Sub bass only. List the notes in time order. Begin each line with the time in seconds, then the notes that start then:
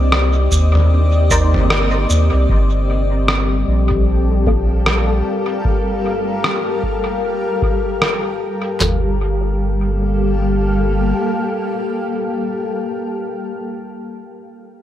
Already playing: C2
0.52 D#2
1.54 G1
2.10 D#2
2.33 C2
2.49 G1
3.68 A#1
8.81 G1